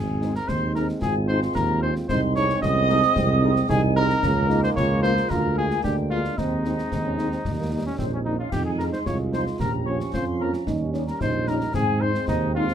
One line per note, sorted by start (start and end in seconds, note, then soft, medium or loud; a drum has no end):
0.00 0.40 G#1 medium
0.00 2.05 G#3 medium
0.00 2.05 C4 medium
0.00 0.31 G#4 medium
0.00 0.31 G#5 medium
0.21 0.31 G#3 medium
0.21 0.31 C4 medium
0.21 0.31 D#4 medium
0.21 snare soft
0.35 0.50 A#4 medium
0.35 0.41 A#5 medium
0.35 snare soft
0.48 0.93 D#2 medium
0.48 0.98 D#4 medium
0.48 0.74 C5 medium
0.48 0.74 C6 medium
0.48 concert bass drum medium
0.48 snare medium
0.75 0.85 G#3 medium
0.75 0.85 C4 medium
0.75 0.85 D#4 medium
0.75 0.87 A#4 medium
0.75 0.82 A#5 medium
0.75 snare soft
0.89 snare soft
1.01 1.47 G#1 medium
1.01 2.05 F4 medium
1.01 1.14 G#4 medium
1.01 1.27 G#5 medium
1.01 concert bass drum medium
1.01 snare medium
1.28 1.39 G#3 medium
1.28 1.39 C4 medium
1.28 1.39 D#4 medium
1.28 1.40 C5 loud
1.28 1.53 C6 medium
1.42 snare soft
1.55 2.00 D#2 medium
1.55 1.80 A#4 medium
1.55 1.82 A#5 medium
1.55 concert bass drum medium
1.55 snare medium
1.82 1.92 G#3 medium
1.82 1.92 C4 medium
1.82 1.92 D#4 medium
1.82 1.94 C5 medium
1.82 1.89 C6 medium
1.96 snare medium
2.08 2.54 C2 medium
2.08 4.19 G#3 medium
2.08 4.20 C4 medium
2.08 2.64 D#4 medium
2.08 2.21 C5 loud
2.08 2.35 C6 medium
2.08 concert bass drum medium
2.08 snare medium
2.35 2.45 G#3 medium
2.35 2.46 C4 medium
2.35 2.46 D#4 medium
2.35 2.61 C#5 loud
2.35 2.61 C#6 medium
2.35 snare medium
2.49 snare soft
2.62 3.03 C2 medium
2.62 2.88 C#4 medium
2.62 3.65 D#5 loud
2.62 3.66 D#6 loud
2.62 concert bass drum medium
2.62 snare medium
2.89 2.99 G#3 medium
2.89 3.14 C4 medium
2.89 2.99 C4 medium
2.89 2.99 D#4 medium
2.89 snare medium
3.03 snare medium
3.16 3.61 C2 medium
3.16 3.66 C4 medium
3.16 concert bass drum medium
3.16 snare medium
3.42 3.52 G#3 medium
3.42 3.52 C4 medium
3.42 3.52 D#4 medium
3.56 snare medium
3.69 4.14 C2 medium
3.69 4.25 D#4 medium
3.69 3.81 G#4 loud
3.69 3.97 G#5 loud
3.69 concert bass drum medium
3.69 snare medium
3.96 4.06 G#3 medium
3.96 4.06 C4 medium
3.96 4.06 D#4 medium
3.96 4.59 A#4 loud
3.96 4.60 A#5 loud
4.10 snare medium
4.23 4.68 C#2 medium
4.23 6.34 G#3 medium
4.23 6.34 A#3 medium
4.23 4.49 C#4 medium
4.23 concert bass drum medium
4.23 snare medium
4.23 crash soft
4.49 4.59 G#3 medium
4.49 4.59 A#3 medium
4.49 4.79 D#4 medium
4.49 4.59 F4 medium
4.49 snare medium
4.63 4.69 C5 loud
4.63 4.70 C6 medium
4.63 snare medium
4.76 5.22 C#2 medium
4.76 5.30 F4 medium
4.76 5.01 C#5 loud
4.76 5.02 C#6 loud
4.76 concert bass drum medium
4.76 snare medium
5.02 5.12 G#3 medium
5.02 5.12 A#3 medium
5.02 5.12 F4 medium
5.02 5.31 C5 loud
5.02 5.29 C6 medium
5.02 snare medium
5.17 snare medium
5.29 5.75 D2 medium
5.29 5.81 F4 medium
5.29 5.57 A#4 loud
5.29 5.58 A#5 medium
5.29 concert bass drum medium
5.29 snare medium
5.56 5.66 G#3 medium
5.56 5.66 A#3 medium
5.56 5.66 F4 medium
5.56 5.82 G#4 loud
5.56 5.84 G#5 medium
5.71 snare soft
5.83 6.29 D2 medium
5.83 6.34 D4 medium
5.83 5.96 G4 medium
5.83 6.11 G5 medium
5.83 concert bass drum medium
5.83 snare medium
6.10 6.20 G#3 medium
6.10 6.20 A#3 medium
6.10 6.20 F4 medium
6.10 6.39 F4 medium
6.10 6.38 F5 medium
6.25 snare soft
6.37 6.82 D#2 medium
6.37 7.41 G#3 medium
6.37 7.45 C4 medium
6.37 6.78 C4 medium
6.37 7.85 D#4 medium
6.37 7.60 D#5 medium
6.37 concert bass drum medium
6.37 snare medium
6.64 6.74 G#3 soft
6.64 6.73 C4 soft
6.64 6.74 D#4 medium
6.64 snare medium
6.79 snare soft
6.91 7.36 D#2 medium
6.91 6.98 C4 medium
6.91 concert bass drum medium
6.91 snare medium
7.04 7.17 C#4 medium
7.17 7.27 G#3 medium
7.17 7.27 C4 soft
7.17 7.27 D#4 medium
7.17 snare medium
7.32 7.44 C4 medium
7.32 snare soft
7.44 7.90 D#2 medium
7.44 8.25 G3 medium
7.44 9.59 D#4 medium
7.44 concert bass drum medium
7.44 snare medium
7.59 7.71 A#3 medium
7.71 7.81 G3 soft
7.71 7.81 A#3 medium
7.71 7.81 D#4 soft
7.84 8.14 C#4 medium
7.84 7.98 C#4 medium
7.84 7.90 C#5 medium
7.98 8.44 A#1 medium
7.98 8.04 C4 medium
7.98 8.11 C5 medium
7.98 concert bass drum medium
7.98 snare medium
8.12 8.39 C4 medium
8.12 8.18 C#4 medium
8.12 8.19 C#5 medium
8.25 8.35 G3 medium
8.25 8.35 A#3 medium
8.25 8.35 D#4 medium
8.25 8.38 D#4 medium
8.25 8.32 D#5 medium
8.39 8.52 C#4 medium
8.39 8.51 F4 medium
8.39 8.52 F5 medium
8.51 8.93 F2 medium
8.51 9.56 G#3 medium
8.51 9.02 D#4 medium
8.51 8.64 G4 medium
8.51 8.60 G5 medium
8.51 concert bass drum medium
8.51 snare medium
8.51 crash soft
8.65 8.71 G#4 medium
8.65 8.79 G#5 medium
8.78 8.89 F3 medium
8.78 8.89 G#3 medium
8.78 8.89 D#4 medium
8.78 8.84 A#4 medium
8.78 snare soft
8.82 8.87 A#5 medium
8.92 8.98 C5 medium
8.92 9.06 C6 medium
8.92 snare medium
9.06 9.51 C2 medium
9.06 9.62 F4 medium
9.06 9.18 C#5 medium
9.06 9.14 C#6 medium
9.06 concert bass drum medium
9.06 snare medium
9.32 9.42 F3 medium
9.32 9.42 G#3 medium
9.32 9.42 D#4 medium
9.32 9.45 C5 medium
9.32 9.58 C6 medium
9.32 snare medium
9.47 snare soft
9.59 10.04 A#1 medium
9.59 10.67 F3 medium
9.59 11.71 C#4 medium
9.59 10.13 G4 medium
9.59 9.72 A#4 medium
9.59 9.85 A#5 medium
9.59 concert bass drum medium
9.59 snare medium
9.85 9.95 F3 medium
9.85 9.96 A#3 medium
9.85 9.95 C#4 medium
9.85 9.98 C#5 medium
9.85 10.14 C#6 medium
10.00 snare medium
10.13 10.58 F2 medium
10.13 10.64 F4 medium
10.13 10.25 C5 medium
10.13 10.41 C6 medium
10.13 concert bass drum medium
10.13 snare medium
10.40 10.50 F3 medium
10.40 10.50 A#3 medium
10.40 10.49 C#4 medium
10.40 10.52 A#4 medium
10.40 10.68 A#5 medium
10.54 snare medium
10.66 11.12 D#2 medium
10.66 11.74 G3 medium
10.66 10.92 D#4 medium
10.66 concert bass drum medium
10.66 snare medium
10.93 11.04 G3 medium
10.93 11.06 C#4 medium
10.93 11.04 C#4 medium
10.93 11.04 D#4 medium
10.93 snare soft
11.07 11.20 A#4 medium
11.07 11.13 A#5 medium
11.07 snare soft
11.20 11.65 A#1 medium
11.20 11.70 D#4 medium
11.20 11.49 C5 medium
11.20 11.27 C6 medium
11.20 concert bass drum medium
11.20 snare medium
11.47 11.57 G3 medium
11.47 11.57 C#4 medium
11.47 11.57 D#4 medium
11.47 11.74 A#4 loud
11.47 11.72 A#5 medium
11.47 snare medium
11.61 snare soft
11.74 12.19 G#2 medium
11.74 12.74 G#3 medium
11.74 12.74 C4 medium
11.74 12.02 G#4 loud
11.74 11.99 G#5 medium
11.74 concert bass drum medium
11.74 snare medium
12.01 12.11 G#3 medium
12.01 12.11 C4 medium
12.01 12.11 D#4 medium
12.01 12.27 C5 loud
12.01 12.28 C6 medium
12.15 snare medium
12.27 12.72 D#2 medium
12.27 12.53 D#4 medium
12.27 12.53 D#5 medium
12.27 concert bass drum medium
12.27 snare medium
12.55 12.65 G#3 medium
12.55 12.65 C4 medium
12.55 12.65 D#4 medium
12.55 12.74 F4 medium
12.55 12.74 F5 medium
12.68 snare medium